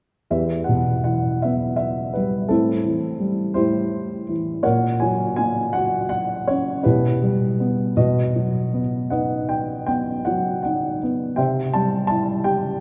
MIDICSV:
0, 0, Header, 1, 2, 480
1, 0, Start_track
1, 0, Key_signature, 1, "minor"
1, 0, Tempo, 738916
1, 201, Time_signature, 6, 3, 24, 8
1, 1162, Tempo, 707547
1, 2602, Tempo, 730816
1, 4522, Tempo, 761421
1, 6922, Tempo, 717703
1, 8367, End_track
2, 0, Start_track
2, 0, Title_t, "Grand piano"
2, 0, Program_c, 0, 0
2, 198, Note_on_c, 0, 40, 35
2, 200, Note_on_c, 0, 76, 49
2, 203, Note_on_c, 0, 71, 34
2, 206, Note_on_c, 0, 67, 33
2, 306, Control_c, 0, 64, 127
2, 417, Note_on_c, 0, 78, 48
2, 447, Note_on_c, 0, 47, 31
2, 448, Note_off_c, 0, 76, 0
2, 666, Note_off_c, 0, 78, 0
2, 676, Note_on_c, 0, 78, 51
2, 682, Note_on_c, 0, 52, 30
2, 899, Note_off_c, 0, 71, 0
2, 900, Note_off_c, 0, 67, 0
2, 925, Note_on_c, 0, 76, 53
2, 928, Note_off_c, 0, 78, 0
2, 935, Note_on_c, 0, 59, 35
2, 1136, Note_off_c, 0, 76, 0
2, 1146, Note_on_c, 0, 76, 54
2, 1381, Note_off_c, 0, 47, 0
2, 1397, Note_on_c, 0, 71, 49
2, 1404, Note_off_c, 0, 76, 0
2, 1416, Note_on_c, 0, 55, 36
2, 1612, Note_off_c, 0, 40, 0
2, 1614, Note_off_c, 0, 52, 0
2, 1626, Note_off_c, 0, 59, 0
2, 1635, Note_on_c, 0, 69, 54
2, 1639, Note_on_c, 0, 64, 38
2, 1640, Note_off_c, 0, 55, 0
2, 1640, Note_on_c, 0, 60, 36
2, 1643, Note_on_c, 0, 45, 43
2, 1645, Note_off_c, 0, 71, 0
2, 1649, Control_c, 0, 64, 0
2, 1775, Control_c, 0, 64, 127
2, 1879, Note_on_c, 0, 52, 35
2, 2118, Note_on_c, 0, 55, 34
2, 2329, Note_off_c, 0, 64, 0
2, 2330, Note_off_c, 0, 60, 0
2, 2351, Note_on_c, 0, 72, 61
2, 2357, Note_off_c, 0, 45, 0
2, 2358, Note_on_c, 0, 64, 41
2, 2359, Note_on_c, 0, 67, 39
2, 2367, Note_on_c, 0, 45, 37
2, 2376, Note_off_c, 0, 69, 0
2, 2814, Note_off_c, 0, 52, 0
2, 2849, Note_on_c, 0, 52, 37
2, 2869, Note_off_c, 0, 72, 0
2, 3051, Note_off_c, 0, 64, 0
2, 3052, Note_off_c, 0, 55, 0
2, 3052, Note_off_c, 0, 67, 0
2, 3061, Note_off_c, 0, 45, 0
2, 3073, Note_on_c, 0, 73, 47
2, 3075, Note_off_c, 0, 52, 0
2, 3076, Note_on_c, 0, 78, 62
2, 3078, Note_on_c, 0, 70, 46
2, 3085, Control_c, 0, 64, 0
2, 3094, Note_on_c, 0, 46, 46
2, 3215, Control_c, 0, 64, 127
2, 3316, Note_on_c, 0, 80, 63
2, 3323, Note_off_c, 0, 78, 0
2, 3329, Note_on_c, 0, 54, 38
2, 3546, Note_off_c, 0, 80, 0
2, 3556, Note_on_c, 0, 80, 72
2, 3566, Note_on_c, 0, 58, 37
2, 3771, Note_off_c, 0, 73, 0
2, 3774, Note_off_c, 0, 70, 0
2, 3796, Note_on_c, 0, 78, 68
2, 3806, Note_off_c, 0, 80, 0
2, 3821, Note_on_c, 0, 66, 41
2, 4025, Note_off_c, 0, 78, 0
2, 4034, Note_on_c, 0, 78, 69
2, 4262, Note_off_c, 0, 54, 0
2, 4286, Note_off_c, 0, 78, 0
2, 4286, Note_on_c, 0, 73, 56
2, 4301, Note_on_c, 0, 61, 41
2, 4499, Note_off_c, 0, 58, 0
2, 4503, Note_off_c, 0, 46, 0
2, 4510, Note_off_c, 0, 66, 0
2, 4519, Note_on_c, 0, 64, 40
2, 4522, Note_on_c, 0, 71, 57
2, 4523, Note_off_c, 0, 61, 0
2, 4524, Note_on_c, 0, 67, 41
2, 4529, Control_c, 0, 64, 0
2, 4530, Note_off_c, 0, 73, 0
2, 4537, Note_on_c, 0, 47, 43
2, 4645, Control_c, 0, 64, 127
2, 4769, Note_on_c, 0, 55, 36
2, 5005, Note_on_c, 0, 59, 33
2, 5205, Note_off_c, 0, 64, 0
2, 5208, Note_off_c, 0, 67, 0
2, 5218, Note_off_c, 0, 47, 0
2, 5226, Note_off_c, 0, 55, 0
2, 5232, Note_off_c, 0, 71, 0
2, 5233, Note_off_c, 0, 59, 0
2, 5236, Note_on_c, 0, 47, 41
2, 5236, Note_on_c, 0, 66, 42
2, 5237, Note_on_c, 0, 75, 57
2, 5240, Control_c, 0, 64, 0
2, 5241, Note_on_c, 0, 71, 38
2, 5362, Control_c, 0, 64, 127
2, 5482, Note_on_c, 0, 54, 32
2, 5719, Note_on_c, 0, 59, 30
2, 5755, Note_off_c, 0, 75, 0
2, 5934, Note_off_c, 0, 66, 0
2, 5937, Note_off_c, 0, 71, 0
2, 5952, Note_on_c, 0, 78, 51
2, 5958, Note_on_c, 0, 63, 35
2, 5959, Note_on_c, 0, 75, 39
2, 5961, Note_on_c, 0, 71, 38
2, 6195, Note_on_c, 0, 79, 53
2, 6201, Note_off_c, 0, 78, 0
2, 6415, Note_off_c, 0, 54, 0
2, 6423, Note_off_c, 0, 79, 0
2, 6429, Note_off_c, 0, 59, 0
2, 6432, Note_on_c, 0, 79, 58
2, 6439, Note_on_c, 0, 59, 31
2, 6656, Note_off_c, 0, 75, 0
2, 6657, Note_off_c, 0, 47, 0
2, 6657, Note_off_c, 0, 71, 0
2, 6674, Note_on_c, 0, 78, 55
2, 6685, Note_off_c, 0, 79, 0
2, 6687, Note_on_c, 0, 54, 44
2, 6896, Note_off_c, 0, 63, 0
2, 6903, Note_off_c, 0, 78, 0
2, 6912, Note_on_c, 0, 78, 46
2, 6931, Note_on_c, 0, 63, 34
2, 7147, Note_off_c, 0, 78, 0
2, 7172, Note_off_c, 0, 59, 0
2, 7182, Note_on_c, 0, 59, 37
2, 7392, Note_off_c, 0, 54, 0
2, 7401, Note_off_c, 0, 63, 0
2, 7404, Note_on_c, 0, 79, 56
2, 7408, Note_on_c, 0, 72, 41
2, 7410, Note_off_c, 0, 59, 0
2, 7414, Note_on_c, 0, 76, 43
2, 7415, Note_on_c, 0, 48, 43
2, 7420, Control_c, 0, 64, 0
2, 7547, Control_c, 0, 64, 127
2, 7629, Note_off_c, 0, 79, 0
2, 7653, Note_on_c, 0, 81, 66
2, 7663, Note_on_c, 0, 55, 39
2, 7869, Note_off_c, 0, 81, 0
2, 7879, Note_on_c, 0, 81, 68
2, 7895, Note_on_c, 0, 64, 35
2, 8097, Note_off_c, 0, 72, 0
2, 8100, Note_off_c, 0, 76, 0
2, 8127, Note_on_c, 0, 67, 42
2, 8127, Note_on_c, 0, 79, 61
2, 8128, Note_off_c, 0, 81, 0
2, 8354, Note_off_c, 0, 79, 0
2, 8367, Note_off_c, 0, 48, 0
2, 8367, Note_off_c, 0, 55, 0
2, 8367, Note_off_c, 0, 64, 0
2, 8367, Note_off_c, 0, 67, 0
2, 8367, End_track
0, 0, End_of_file